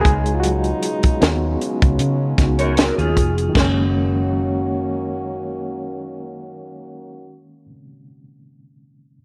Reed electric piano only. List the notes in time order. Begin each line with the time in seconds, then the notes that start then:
0.01 G#3 G#4
0.35 F4
0.40 F#3 F#4
1.20 B3 D#4 F#4
2.38 B3 D#4 F#4
3.49 D#3 G#3
3.57 A#3 C#4